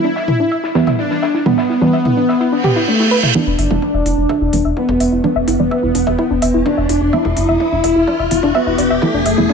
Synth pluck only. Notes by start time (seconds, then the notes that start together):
0.04 D4
0.16 E5
0.28 E4
0.40 D4
0.52 E5
0.64 E4
0.75 D4
0.87 E5
0.99 E4
1.11 D4
1.22 E5
1.34 E4
1.46 D4
1.58 E5
1.70 E4
1.82 D4
1.93 E5
2.05 E4
2.17 D4
2.29 E5
2.40 E4
2.52 D4
2.64 G4
2.76 E4
2.88 D4
3.00 E4
3.11 B4
3.23 E4
3.35 E4
3.47 D4
3.59 E5
3.71 E4
3.82 D4
3.94 E5
4.06 E4
4.18 D4
4.29 E5
4.41 E4
4.53 D4
4.65 E5
4.77 E4
4.89 D4
5.00 E5
5.12 E4
5.24 D4
5.36 E5
5.48 E4
5.60 D4
5.71 E5
5.83 E4
5.95 D4
6.07 E5
6.19 E4
6.31 D4
6.42 E5
6.54 E4
6.66 D4
6.78 E5
6.89 E4
7.01 D4
7.13 E5
7.25 E4
7.37 D4
7.49 E5
7.60 E4
7.72 D4
7.84 E5
7.96 E4
8.07 D4
8.19 E5
8.31 E4
8.43 D4
8.55 E5
8.67 E4
8.78 D4
8.90 E5
9.02 E4
9.14 D4
9.26 E5
9.38 E4
9.49 D4